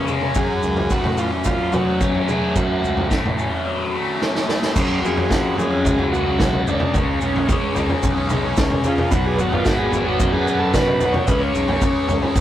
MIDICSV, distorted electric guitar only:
0, 0, Header, 1, 2, 480
1, 0, Start_track
1, 0, Tempo, 548948
1, 313, Time_signature, 4, 2, 24, 8
1, 6072, Tempo, 542005
1, 10908, End_track
2, 0, Start_track
2, 0, Title_t, "Distorted electric guitar"
2, 0, Program_c, 0, 30
2, 0, Note_on_c, 0, 53, 74
2, 0, Note_on_c, 0, 61, 75
2, 68, Note_on_c, 0, 56, 68
2, 311, Note_off_c, 0, 56, 0
2, 318, Note_off_c, 0, 53, 0
2, 318, Note_on_c, 0, 42, 66
2, 793, Note_on_c, 0, 57, 67
2, 1032, Note_off_c, 0, 61, 0
2, 1035, Note_on_c, 0, 61, 68
2, 1272, Note_on_c, 0, 54, 67
2, 1509, Note_off_c, 0, 57, 0
2, 1512, Note_on_c, 0, 57, 67
2, 1742, Note_off_c, 0, 61, 0
2, 1745, Note_on_c, 0, 61, 74
2, 1983, Note_off_c, 0, 57, 0
2, 1993, Note_on_c, 0, 57, 69
2, 2221, Note_off_c, 0, 42, 0
2, 2225, Note_on_c, 0, 42, 70
2, 2476, Note_off_c, 0, 54, 0
2, 2696, Note_off_c, 0, 57, 0
2, 2707, Note_on_c, 0, 57, 68
2, 2948, Note_off_c, 0, 61, 0
2, 2958, Note_on_c, 0, 61, 69
2, 3200, Note_on_c, 0, 54, 68
2, 3431, Note_off_c, 0, 57, 0
2, 3433, Note_off_c, 0, 42, 0
2, 3441, Note_on_c, 0, 57, 68
2, 3666, Note_off_c, 0, 61, 0
2, 3676, Note_on_c, 0, 61, 73
2, 3909, Note_off_c, 0, 57, 0
2, 3920, Note_on_c, 0, 57, 64
2, 4141, Note_on_c, 0, 42, 93
2, 4157, Note_off_c, 0, 61, 0
2, 4159, Note_off_c, 0, 54, 0
2, 4159, Note_off_c, 0, 57, 0
2, 4161, Note_on_c, 0, 49, 86
2, 4170, Note_on_c, 0, 54, 96
2, 4372, Note_off_c, 0, 42, 0
2, 4382, Note_on_c, 0, 42, 62
2, 4385, Note_off_c, 0, 49, 0
2, 4396, Note_on_c, 0, 49, 73
2, 4404, Note_off_c, 0, 54, 0
2, 4408, Note_on_c, 0, 54, 76
2, 4499, Note_off_c, 0, 54, 0
2, 4503, Note_on_c, 0, 54, 64
2, 4521, Note_off_c, 0, 49, 0
2, 4532, Note_on_c, 0, 49, 58
2, 4609, Note_off_c, 0, 42, 0
2, 4619, Note_on_c, 0, 42, 85
2, 4620, Note_off_c, 0, 49, 0
2, 4631, Note_on_c, 0, 49, 95
2, 4642, Note_off_c, 0, 54, 0
2, 4645, Note_on_c, 0, 54, 95
2, 4844, Note_off_c, 0, 42, 0
2, 4854, Note_on_c, 0, 42, 74
2, 4862, Note_off_c, 0, 49, 0
2, 4873, Note_on_c, 0, 49, 79
2, 4878, Note_off_c, 0, 54, 0
2, 4882, Note_on_c, 0, 54, 85
2, 4977, Note_off_c, 0, 54, 0
2, 4980, Note_on_c, 0, 54, 65
2, 4995, Note_off_c, 0, 49, 0
2, 5005, Note_on_c, 0, 49, 59
2, 5223, Note_off_c, 0, 54, 0
2, 5224, Note_off_c, 0, 42, 0
2, 5227, Note_on_c, 0, 54, 67
2, 5239, Note_off_c, 0, 49, 0
2, 5250, Note_on_c, 0, 49, 48
2, 5348, Note_on_c, 0, 42, 65
2, 5354, Note_off_c, 0, 49, 0
2, 5365, Note_on_c, 0, 49, 80
2, 5374, Note_off_c, 0, 54, 0
2, 5378, Note_on_c, 0, 54, 86
2, 5472, Note_off_c, 0, 54, 0
2, 5475, Note_on_c, 0, 54, 66
2, 5488, Note_off_c, 0, 49, 0
2, 5498, Note_on_c, 0, 49, 58
2, 5573, Note_off_c, 0, 42, 0
2, 5583, Note_on_c, 0, 42, 91
2, 5584, Note_off_c, 0, 49, 0
2, 5594, Note_on_c, 0, 49, 93
2, 5604, Note_off_c, 0, 54, 0
2, 5608, Note_on_c, 0, 54, 96
2, 5813, Note_off_c, 0, 42, 0
2, 5818, Note_off_c, 0, 49, 0
2, 5833, Note_on_c, 0, 49, 88
2, 5840, Note_off_c, 0, 54, 0
2, 5844, Note_on_c, 0, 56, 100
2, 5858, Note_on_c, 0, 61, 105
2, 6056, Note_off_c, 0, 49, 0
2, 6067, Note_on_c, 0, 49, 83
2, 6073, Note_off_c, 0, 56, 0
2, 6084, Note_on_c, 0, 56, 90
2, 6087, Note_off_c, 0, 61, 0
2, 6097, Note_on_c, 0, 61, 93
2, 6292, Note_off_c, 0, 49, 0
2, 6303, Note_on_c, 0, 49, 70
2, 6308, Note_off_c, 0, 56, 0
2, 6319, Note_on_c, 0, 56, 65
2, 6324, Note_off_c, 0, 61, 0
2, 6335, Note_on_c, 0, 61, 77
2, 6408, Note_off_c, 0, 61, 0
2, 6419, Note_on_c, 0, 61, 67
2, 6439, Note_off_c, 0, 56, 0
2, 6449, Note_on_c, 0, 56, 52
2, 6536, Note_off_c, 0, 49, 0
2, 6546, Note_on_c, 0, 49, 89
2, 6553, Note_off_c, 0, 56, 0
2, 6564, Note_on_c, 0, 56, 92
2, 6567, Note_off_c, 0, 61, 0
2, 6578, Note_on_c, 0, 61, 95
2, 6765, Note_off_c, 0, 49, 0
2, 6775, Note_on_c, 0, 49, 76
2, 6786, Note_off_c, 0, 56, 0
2, 6795, Note_off_c, 0, 61, 0
2, 6796, Note_on_c, 0, 56, 82
2, 6806, Note_on_c, 0, 61, 81
2, 6881, Note_off_c, 0, 61, 0
2, 6892, Note_on_c, 0, 61, 67
2, 6905, Note_off_c, 0, 56, 0
2, 6916, Note_on_c, 0, 56, 60
2, 7127, Note_off_c, 0, 61, 0
2, 7138, Note_on_c, 0, 61, 70
2, 7146, Note_off_c, 0, 49, 0
2, 7159, Note_off_c, 0, 56, 0
2, 7170, Note_on_c, 0, 56, 57
2, 7252, Note_on_c, 0, 49, 75
2, 7261, Note_off_c, 0, 56, 0
2, 7269, Note_off_c, 0, 61, 0
2, 7272, Note_on_c, 0, 56, 83
2, 7280, Note_on_c, 0, 61, 86
2, 7371, Note_off_c, 0, 61, 0
2, 7382, Note_on_c, 0, 61, 75
2, 7399, Note_off_c, 0, 56, 0
2, 7410, Note_on_c, 0, 56, 58
2, 7490, Note_off_c, 0, 49, 0
2, 7501, Note_on_c, 0, 49, 89
2, 7506, Note_off_c, 0, 56, 0
2, 7516, Note_on_c, 0, 56, 101
2, 7517, Note_off_c, 0, 61, 0
2, 7528, Note_on_c, 0, 61, 105
2, 7727, Note_off_c, 0, 49, 0
2, 7737, Note_on_c, 0, 49, 70
2, 7750, Note_off_c, 0, 56, 0
2, 7760, Note_on_c, 0, 56, 80
2, 7761, Note_off_c, 0, 61, 0
2, 7772, Note_on_c, 0, 61, 82
2, 7973, Note_off_c, 0, 49, 0
2, 7977, Note_on_c, 0, 47, 92
2, 7984, Note_off_c, 0, 56, 0
2, 7990, Note_off_c, 0, 61, 0
2, 7997, Note_on_c, 0, 54, 98
2, 8011, Note_on_c, 0, 59, 92
2, 8203, Note_off_c, 0, 47, 0
2, 8213, Note_on_c, 0, 47, 75
2, 8228, Note_off_c, 0, 54, 0
2, 8232, Note_off_c, 0, 59, 0
2, 8232, Note_on_c, 0, 54, 75
2, 8243, Note_on_c, 0, 59, 82
2, 8332, Note_off_c, 0, 59, 0
2, 8343, Note_on_c, 0, 59, 69
2, 8372, Note_off_c, 0, 54, 0
2, 8375, Note_on_c, 0, 54, 57
2, 8453, Note_off_c, 0, 47, 0
2, 8463, Note_on_c, 0, 47, 85
2, 8471, Note_off_c, 0, 54, 0
2, 8475, Note_on_c, 0, 54, 92
2, 8481, Note_off_c, 0, 59, 0
2, 8492, Note_on_c, 0, 59, 99
2, 8684, Note_off_c, 0, 47, 0
2, 8695, Note_on_c, 0, 47, 74
2, 8713, Note_off_c, 0, 54, 0
2, 8716, Note_on_c, 0, 54, 83
2, 8721, Note_off_c, 0, 59, 0
2, 8732, Note_on_c, 0, 59, 76
2, 8817, Note_off_c, 0, 59, 0
2, 8827, Note_on_c, 0, 59, 69
2, 8854, Note_off_c, 0, 54, 0
2, 8857, Note_on_c, 0, 54, 58
2, 9050, Note_off_c, 0, 59, 0
2, 9061, Note_on_c, 0, 59, 66
2, 9066, Note_off_c, 0, 47, 0
2, 9084, Note_off_c, 0, 54, 0
2, 9088, Note_on_c, 0, 54, 58
2, 9188, Note_on_c, 0, 47, 77
2, 9197, Note_off_c, 0, 54, 0
2, 9201, Note_on_c, 0, 54, 78
2, 9208, Note_off_c, 0, 59, 0
2, 9219, Note_on_c, 0, 59, 79
2, 9304, Note_off_c, 0, 59, 0
2, 9315, Note_on_c, 0, 59, 71
2, 9336, Note_off_c, 0, 54, 0
2, 9340, Note_on_c, 0, 54, 61
2, 9416, Note_off_c, 0, 47, 0
2, 9427, Note_on_c, 0, 47, 97
2, 9444, Note_off_c, 0, 59, 0
2, 9445, Note_off_c, 0, 54, 0
2, 9448, Note_on_c, 0, 54, 87
2, 9454, Note_on_c, 0, 59, 111
2, 9653, Note_off_c, 0, 47, 0
2, 9664, Note_on_c, 0, 47, 77
2, 9674, Note_off_c, 0, 54, 0
2, 9678, Note_on_c, 0, 54, 84
2, 9683, Note_off_c, 0, 59, 0
2, 9693, Note_on_c, 0, 59, 81
2, 9894, Note_off_c, 0, 47, 0
2, 9909, Note_off_c, 0, 59, 0
2, 9916, Note_on_c, 0, 49, 94
2, 9924, Note_off_c, 0, 54, 0
2, 9927, Note_on_c, 0, 56, 92
2, 9942, Note_on_c, 0, 61, 101
2, 10133, Note_off_c, 0, 49, 0
2, 10143, Note_on_c, 0, 49, 69
2, 10152, Note_off_c, 0, 56, 0
2, 10162, Note_on_c, 0, 56, 72
2, 10169, Note_off_c, 0, 61, 0
2, 10173, Note_on_c, 0, 61, 78
2, 10267, Note_off_c, 0, 61, 0
2, 10270, Note_on_c, 0, 61, 72
2, 10286, Note_off_c, 0, 56, 0
2, 10296, Note_on_c, 0, 56, 60
2, 10373, Note_off_c, 0, 49, 0
2, 10384, Note_on_c, 0, 49, 96
2, 10385, Note_off_c, 0, 56, 0
2, 10396, Note_on_c, 0, 56, 89
2, 10410, Note_off_c, 0, 61, 0
2, 10413, Note_on_c, 0, 61, 102
2, 10610, Note_off_c, 0, 49, 0
2, 10621, Note_on_c, 0, 49, 76
2, 10629, Note_off_c, 0, 56, 0
2, 10640, Note_on_c, 0, 56, 81
2, 10650, Note_off_c, 0, 61, 0
2, 10653, Note_on_c, 0, 61, 82
2, 10748, Note_off_c, 0, 61, 0
2, 10752, Note_on_c, 0, 61, 73
2, 10766, Note_off_c, 0, 56, 0
2, 10776, Note_on_c, 0, 56, 60
2, 10908, Note_off_c, 0, 49, 0
2, 10908, Note_off_c, 0, 56, 0
2, 10908, Note_off_c, 0, 61, 0
2, 10908, End_track
0, 0, End_of_file